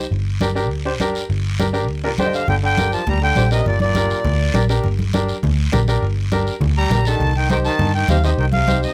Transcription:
0.11 G1, long guiro
0.41 D4 G4 A#4, high conga, short guiro
0.55 D4 G4 A#4, short guiro
0.70 D2, long guiro
0.85 D4 G4 C5
1.00 G1 D4 G4 A#4, high conga, short guiro
1.15 short guiro
1.30 G1, long guiro
1.59 D4 G4 A#4, high conga, short guiro
1.73 D4 G4 A#4, short guiro
1.88 D2, long guiro
2.04 A#2 D4 G4 A#4 D5
2.18 G1 D3 D4 G4 C5 G5, high conga, short guiro
2.26 D#5
2.33 D3 F5, short guiro
2.48 G1 D3 G5, low conga, long guiro
2.63 D3 G5
2.78 D4 G4 A#4, high conga, short guiro
2.92 F3 A5, short guiro
3.07 D2 G3 A#5, low conga, long guiro
3.21 D3 G5
3.36 A#1 D4 G4 C5, high conga, short guiro
3.51 C3 D4 G4 A#4 D#5, short guiro
3.66 G1 A#2 D5, low conga, long guiro
3.80 A#2 D5, high conga
3.95 D4 G4 A#4, high conga, short guiro
4.10 short guiro
4.25 D2, low conga, long guiro
4.54 A#1 D4 G4 A#4, high conga, short guiro
4.69 D4 G4 A#4, short guiro
4.84 G1, low conga, long guiro
4.99 high conga
5.13 D4 G4 A#4, high conga, short guiro
5.29 short guiro
5.43 D2, low conga, long guiro
5.72 A#1 D4 G4 A#4, high conga, low conga, short guiro
5.88 D4 G4 A#4, short guiro
6.02 G1, long guiro
6.32 D4 G4 A#4, high conga, short guiro
6.47 short guiro
6.61 D2, low conga, long guiro
6.77 G3 A#5
6.90 A#1 D4 G4 A#4, high conga, low conga, short guiro
7.05 D#3 D4 G4 A4 A5, short guiro
7.20 C2, low conga, long guiro
7.36 D#3 G5
7.50 D#3 D#4 G4 C5 G5, high conga, short guiro
7.65 D#3 A5, short guiro
7.79 G2, low conga, long guiro
7.95 D#3 G5
8.08 D#2 C3 D#4 G4 C5 F5, high conga, low conga, short guiro
8.24 C3 D#4 G4 C5 D#5, short guiro
8.38 C2 D#3 G5, long guiro
8.52 C3 F5, high conga
8.67 D#4 G4 C5, high conga, short guiro
8.83 C3 D#5, short guiro

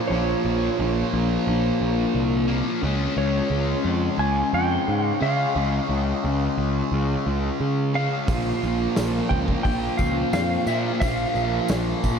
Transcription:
Already playing: F3
0.08 A#1 A#2 F3 C#5
0.13 A#3
0.45 A#1
0.79 A#1
1.13 A#1
1.47 A#1
1.81 A#1
2.15 C2
2.48 A#2 F3 A#3
2.82 C#2 C#3 G#3 C#4
3.17 C#2 C#5
3.50 C#2
3.85 F2
4.18 C#2 G#5
4.53 F2 G5
4.88 G#2
5.06 F5
5.20 C#3 G#3 C#4 F5
5.55 C#2 C#3 G#3 C#4
5.89 C#2
6.24 C#2
6.58 C#2
6.92 C#2
7.26 C#2
7.60 C#3
7.94 C#3 G#3 C#4 F5
8.28 A#1 A#2 F3 A#3, kick, open hi-hat, tambourine
8.63 A#1, tambourine
8.96 A#1, snare, open hi-hat, tambourine
9.29 C#2 G5, kick
9.48 kick
9.63 A#1 G5, kick, open hi-hat
9.97 C#2 F5, kick, tambourine
10.33 F2 F5, snare, open hi-hat, tambourine
10.66 A#2 F3 A#3 E5, tambourine
11.00 A#1 A#2 F3 A#3 F5, kick, open hi-hat, tambourine
11.35 A#1, tambourine
11.68 A#1, snare, open hi-hat, tambourine
12.04 A#1, kick, tambourine

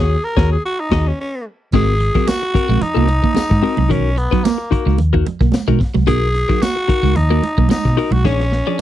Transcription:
Already playing: D#2 G#4 C#5
0.00 F#4 G#4
0.24 A#4
0.37 D#2 F#4 G#4 C#5, kick, snare
0.52 G#4
0.65 F#4
0.80 D#4
0.91 D#2 F#4 G#4 D#5, kick, snare, crash
1.07 C#4
1.20 C#4
1.72 G#1 G#3 C4 F#4 G#4 A#4, kick, crash, muted conga
2.00 muted clean electric guitar stroke, closed hi-hat
2.15 F#3 C4 F#4 A#4, kick, snare
2.27 A#3 F#4, muted clean electric guitar stroke, snare, closed hi-hat, tambourine, high conga
2.42 muted clean electric guitar stroke
2.54 C4 F#4 A#4, muted clean electric guitar stroke, muted fingered electric bass stroke, kick, closed hi-hat
2.68 A#1 G#3 C4 F#4 A#4, snare
2.81 D#4, muted clean electric guitar stroke, muted fingered electric bass stroke, closed hi-hat, muted conga, low conga
2.94 C2 A#3 C4 F#4 A#4
3.08 muted clean electric guitar stroke, closed hi-hat, muted conga
3.23 A#3, muted clean electric guitar stroke, kick
3.35 G#3, muted clean electric guitar stroke, snare, closed hi-hat, tambourine, high conga
3.50 G#2, muted clean electric guitar stroke, kick, snare
3.62 C4 F#4 A#4, muted clean electric guitar stroke, open hi-hat
3.77 C2 F#3, muted clean electric guitar stroke, high conga
3.89 B1 D#3 C#4 D#4 F#4 A#4, kick, closed hi-hat
4.17 B3, muted clean electric guitar stroke, closed hi-hat
4.31 F#3 D#4 F#4 B4, kick, snare
4.43 A#3, muted clean electric guitar stroke, snare, closed hi-hat, tambourine, high conga
4.58 muted clean electric guitar stroke
4.71 D#4 F#4 A#4, muted fingered electric bass stroke, muted clean electric guitar stroke, kick, closed hi-hat
4.85 C#2 G#3 D#4 F#4 A#4, snare
4.98 D#2, muted clean electric guitar stroke, closed hi-hat, muted conga, low conga
5.13 A#3 D#4 F#4 A#4, kick
5.26 muted clean electric guitar stroke, closed hi-hat, muted conga, low conga
5.41 B1 A#3, muted clean electric guitar stroke, kick, snare
5.52 muted clean electric guitar stroke, snare, closed hi-hat, tambourine, high conga
5.68 B2 G#3 D#4 F#4 A#4, kick
5.80 muted clean electric guitar stroke, kick, snare, open hi-hat
5.94 C2 F#3, muted clean electric guitar stroke, snare, high conga
6.07 B1 B3 D#4 F#4 G#4 A#4, kick, closed hi-hat, muted conga
6.35 muted clean electric guitar stroke, closed hi-hat
6.49 F#3 D#4 F#4 A#4, kick, snare
6.61 A#3 F#4, muted clean electric guitar stroke, snare, closed hi-hat, tambourine, high conga
6.76 muted clean electric guitar stroke
6.88 D#4 F#4 A#4, muted clean electric guitar stroke, muted fingered electric bass stroke, kick, closed hi-hat
7.03 C#2 G#3 D#4 F#4 A#4, snare
7.15 D#2 D#4, closed hi-hat, muted conga, low conga
7.30 A#3 D#4 F#4 A#4
7.43 muted clean electric guitar stroke, closed hi-hat, muted conga
7.58 B1 A#3, muted clean electric guitar stroke, kick
7.69 G#3 D#4, muted clean electric guitar stroke, snare, closed hi-hat, tambourine, high conga
7.85 B2, muted clean electric guitar stroke, kick, snare
7.97 D#4 F#4 A#4, muted clean electric guitar stroke, open hi-hat
8.11 B1 F#3 F#4, high conga
8.25 A#1 D#3 C#4 D4 G#4 C#5, kick, snare
8.40 snare
8.52 muted clean electric guitar stroke, snare
8.67 F3 D4 G#4 D5

